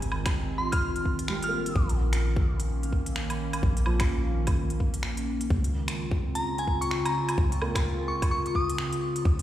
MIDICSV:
0, 0, Header, 1, 6, 480
1, 0, Start_track
1, 0, Tempo, 468750
1, 1801, Time_signature, 4, 2, 24, 8
1, 9649, End_track
2, 0, Start_track
2, 0, Title_t, "Synth bell"
2, 0, Program_c, 0, 98
2, 595, Note_on_c, 0, 84, 85
2, 714, Note_off_c, 0, 84, 0
2, 737, Note_on_c, 0, 89, 87
2, 991, Note_off_c, 0, 89, 0
2, 1473, Note_on_c, 0, 89, 88
2, 1863, Note_off_c, 0, 89, 0
2, 6504, Note_on_c, 0, 82, 88
2, 6716, Note_off_c, 0, 82, 0
2, 6747, Note_on_c, 0, 80, 85
2, 6976, Note_on_c, 0, 85, 87
2, 6996, Note_off_c, 0, 80, 0
2, 7042, Note_off_c, 0, 85, 0
2, 7072, Note_on_c, 0, 85, 75
2, 7169, Note_off_c, 0, 85, 0
2, 7223, Note_on_c, 0, 82, 91
2, 7474, Note_off_c, 0, 82, 0
2, 8274, Note_on_c, 0, 85, 86
2, 8499, Note_off_c, 0, 85, 0
2, 8512, Note_on_c, 0, 85, 87
2, 8609, Note_off_c, 0, 85, 0
2, 8673, Note_on_c, 0, 85, 73
2, 8731, Note_off_c, 0, 85, 0
2, 8762, Note_on_c, 0, 87, 88
2, 9242, Note_off_c, 0, 87, 0
2, 9649, End_track
3, 0, Start_track
3, 0, Title_t, "Ambient pad"
3, 0, Program_c, 1, 92
3, 0, Note_on_c, 1, 51, 80
3, 0, Note_on_c, 1, 60, 76
3, 0, Note_on_c, 1, 65, 89
3, 1764, Note_off_c, 1, 60, 0
3, 1781, Note_off_c, 1, 65, 0
3, 1796, Note_on_c, 1, 58, 72
3, 1797, Note_on_c, 1, 61, 91
3, 5600, Note_off_c, 1, 58, 0
3, 5601, Note_off_c, 1, 51, 0
3, 5601, Note_off_c, 1, 61, 0
3, 5633, Note_on_c, 1, 49, 82
3, 5633, Note_on_c, 1, 65, 87
3, 5635, Note_on_c, 1, 60, 75
3, 9439, Note_off_c, 1, 49, 0
3, 9439, Note_off_c, 1, 65, 0
3, 9440, Note_off_c, 1, 60, 0
3, 9483, Note_on_c, 1, 51, 85
3, 9488, Note_on_c, 1, 61, 75
3, 9493, Note_on_c, 1, 67, 91
3, 9649, Note_off_c, 1, 51, 0
3, 9649, Note_off_c, 1, 61, 0
3, 9649, Note_off_c, 1, 67, 0
3, 9649, End_track
4, 0, Start_track
4, 0, Title_t, "Felt piano"
4, 0, Program_c, 2, 0
4, 0, Control_c, 2, 64, 127
4, 0, Note_on_c, 2, 56, 52
4, 0, Note_on_c, 2, 63, 61
4, 1326, Note_on_c, 2, 55, 52
4, 1522, Note_on_c, 2, 58, 51
4, 1780, Note_off_c, 2, 55, 0
4, 1813, Control_c, 2, 64, 0
4, 1815, Note_off_c, 2, 63, 0
4, 1823, Note_off_c, 2, 56, 0
4, 1949, Note_off_c, 2, 58, 0
4, 1992, Control_c, 2, 64, 127
4, 3956, Note_on_c, 2, 53, 51
4, 4415, Note_off_c, 2, 53, 0
4, 5653, Control_c, 2, 64, 0
4, 5848, Control_c, 2, 64, 127
4, 7802, Note_on_c, 2, 58, 65
4, 8258, Note_off_c, 2, 58, 0
4, 9493, Control_c, 2, 64, 0
4, 9649, End_track
5, 0, Start_track
5, 0, Title_t, "808-style bass"
5, 0, Program_c, 3, 38
5, 0, Note_on_c, 3, 32, 87
5, 1781, Note_off_c, 3, 32, 0
5, 1797, Note_on_c, 3, 34, 89
5, 3700, Note_off_c, 3, 34, 0
5, 3715, Note_on_c, 3, 34, 88
5, 5619, Note_off_c, 3, 34, 0
5, 5635, Note_on_c, 3, 37, 87
5, 7539, Note_off_c, 3, 37, 0
5, 7554, Note_on_c, 3, 37, 87
5, 9459, Note_off_c, 3, 37, 0
5, 9475, Note_on_c, 3, 39, 92
5, 9649, Note_off_c, 3, 39, 0
5, 9649, End_track
6, 0, Start_track
6, 0, Title_t, "Drums"
6, 24, Note_on_c, 9, 42, 42
6, 120, Note_on_c, 9, 77, 62
6, 126, Note_off_c, 9, 42, 0
6, 222, Note_off_c, 9, 77, 0
6, 263, Note_on_c, 9, 26, 106
6, 263, Note_on_c, 9, 42, 54
6, 263, Note_on_c, 9, 77, 65
6, 267, Note_on_c, 9, 36, 109
6, 365, Note_off_c, 9, 26, 0
6, 365, Note_off_c, 9, 42, 0
6, 365, Note_off_c, 9, 77, 0
6, 369, Note_off_c, 9, 36, 0
6, 742, Note_on_c, 9, 42, 57
6, 742, Note_on_c, 9, 77, 53
6, 745, Note_on_c, 9, 36, 103
6, 844, Note_off_c, 9, 42, 0
6, 844, Note_off_c, 9, 77, 0
6, 848, Note_off_c, 9, 36, 0
6, 981, Note_on_c, 9, 42, 32
6, 1080, Note_on_c, 9, 36, 56
6, 1083, Note_off_c, 9, 42, 0
6, 1182, Note_off_c, 9, 36, 0
6, 1218, Note_on_c, 9, 42, 56
6, 1313, Note_on_c, 9, 26, 104
6, 1321, Note_off_c, 9, 42, 0
6, 1415, Note_off_c, 9, 26, 0
6, 1460, Note_on_c, 9, 42, 46
6, 1562, Note_off_c, 9, 42, 0
6, 1701, Note_on_c, 9, 42, 54
6, 1798, Note_on_c, 9, 36, 117
6, 1804, Note_off_c, 9, 42, 0
6, 1900, Note_off_c, 9, 36, 0
6, 1940, Note_on_c, 9, 42, 43
6, 2042, Note_off_c, 9, 42, 0
6, 2179, Note_on_c, 9, 26, 105
6, 2179, Note_on_c, 9, 42, 53
6, 2281, Note_off_c, 9, 26, 0
6, 2281, Note_off_c, 9, 42, 0
6, 2421, Note_on_c, 9, 36, 106
6, 2524, Note_off_c, 9, 36, 0
6, 2659, Note_on_c, 9, 42, 56
6, 2762, Note_off_c, 9, 42, 0
6, 2901, Note_on_c, 9, 42, 31
6, 2996, Note_on_c, 9, 36, 57
6, 3003, Note_off_c, 9, 42, 0
6, 3098, Note_off_c, 9, 36, 0
6, 3137, Note_on_c, 9, 42, 54
6, 3234, Note_on_c, 9, 26, 105
6, 3240, Note_off_c, 9, 42, 0
6, 3337, Note_off_c, 9, 26, 0
6, 3379, Note_on_c, 9, 42, 44
6, 3379, Note_on_c, 9, 77, 49
6, 3482, Note_off_c, 9, 42, 0
6, 3482, Note_off_c, 9, 77, 0
6, 3618, Note_on_c, 9, 42, 53
6, 3618, Note_on_c, 9, 77, 59
6, 3717, Note_on_c, 9, 36, 113
6, 3721, Note_off_c, 9, 42, 0
6, 3721, Note_off_c, 9, 77, 0
6, 3819, Note_off_c, 9, 36, 0
6, 3858, Note_on_c, 9, 42, 43
6, 3951, Note_on_c, 9, 77, 60
6, 3961, Note_off_c, 9, 42, 0
6, 4053, Note_off_c, 9, 77, 0
6, 4093, Note_on_c, 9, 26, 104
6, 4093, Note_on_c, 9, 42, 51
6, 4093, Note_on_c, 9, 77, 60
6, 4102, Note_on_c, 9, 36, 107
6, 4195, Note_off_c, 9, 26, 0
6, 4195, Note_off_c, 9, 42, 0
6, 4195, Note_off_c, 9, 77, 0
6, 4205, Note_off_c, 9, 36, 0
6, 4577, Note_on_c, 9, 42, 55
6, 4577, Note_on_c, 9, 77, 49
6, 4582, Note_on_c, 9, 36, 104
6, 4680, Note_off_c, 9, 42, 0
6, 4680, Note_off_c, 9, 77, 0
6, 4684, Note_off_c, 9, 36, 0
6, 4814, Note_on_c, 9, 42, 30
6, 4917, Note_off_c, 9, 42, 0
6, 4917, Note_on_c, 9, 36, 58
6, 5019, Note_off_c, 9, 36, 0
6, 5056, Note_on_c, 9, 42, 54
6, 5149, Note_on_c, 9, 26, 103
6, 5159, Note_off_c, 9, 42, 0
6, 5252, Note_off_c, 9, 26, 0
6, 5297, Note_on_c, 9, 42, 43
6, 5400, Note_off_c, 9, 42, 0
6, 5538, Note_on_c, 9, 42, 52
6, 5636, Note_on_c, 9, 36, 113
6, 5640, Note_off_c, 9, 42, 0
6, 5739, Note_off_c, 9, 36, 0
6, 5778, Note_on_c, 9, 42, 42
6, 5881, Note_off_c, 9, 42, 0
6, 6021, Note_on_c, 9, 26, 100
6, 6021, Note_on_c, 9, 42, 51
6, 6123, Note_off_c, 9, 26, 0
6, 6123, Note_off_c, 9, 42, 0
6, 6261, Note_on_c, 9, 36, 100
6, 6363, Note_off_c, 9, 36, 0
6, 6505, Note_on_c, 9, 42, 52
6, 6607, Note_off_c, 9, 42, 0
6, 6741, Note_on_c, 9, 42, 29
6, 6836, Note_on_c, 9, 36, 57
6, 6844, Note_off_c, 9, 42, 0
6, 6938, Note_off_c, 9, 36, 0
6, 6982, Note_on_c, 9, 42, 49
6, 7079, Note_on_c, 9, 26, 99
6, 7085, Note_off_c, 9, 42, 0
6, 7181, Note_off_c, 9, 26, 0
6, 7225, Note_on_c, 9, 42, 41
6, 7225, Note_on_c, 9, 77, 51
6, 7327, Note_off_c, 9, 42, 0
6, 7327, Note_off_c, 9, 77, 0
6, 7461, Note_on_c, 9, 42, 50
6, 7461, Note_on_c, 9, 77, 60
6, 7555, Note_on_c, 9, 36, 109
6, 7564, Note_off_c, 9, 42, 0
6, 7564, Note_off_c, 9, 77, 0
6, 7658, Note_off_c, 9, 36, 0
6, 7702, Note_on_c, 9, 42, 41
6, 7799, Note_on_c, 9, 77, 60
6, 7805, Note_off_c, 9, 42, 0
6, 7901, Note_off_c, 9, 77, 0
6, 7939, Note_on_c, 9, 36, 97
6, 7943, Note_on_c, 9, 26, 100
6, 7943, Note_on_c, 9, 42, 52
6, 7943, Note_on_c, 9, 77, 61
6, 8042, Note_off_c, 9, 36, 0
6, 8045, Note_off_c, 9, 26, 0
6, 8045, Note_off_c, 9, 42, 0
6, 8045, Note_off_c, 9, 77, 0
6, 8419, Note_on_c, 9, 36, 97
6, 8421, Note_on_c, 9, 42, 53
6, 8421, Note_on_c, 9, 77, 52
6, 8522, Note_off_c, 9, 36, 0
6, 8523, Note_off_c, 9, 42, 0
6, 8523, Note_off_c, 9, 77, 0
6, 8661, Note_on_c, 9, 42, 29
6, 8756, Note_on_c, 9, 36, 57
6, 8763, Note_off_c, 9, 42, 0
6, 8858, Note_off_c, 9, 36, 0
6, 8904, Note_on_c, 9, 42, 52
6, 8995, Note_on_c, 9, 26, 94
6, 9006, Note_off_c, 9, 42, 0
6, 9098, Note_off_c, 9, 26, 0
6, 9140, Note_on_c, 9, 42, 42
6, 9242, Note_off_c, 9, 42, 0
6, 9378, Note_on_c, 9, 42, 53
6, 9475, Note_on_c, 9, 36, 107
6, 9481, Note_off_c, 9, 42, 0
6, 9578, Note_off_c, 9, 36, 0
6, 9618, Note_on_c, 9, 42, 41
6, 9649, Note_off_c, 9, 42, 0
6, 9649, End_track
0, 0, End_of_file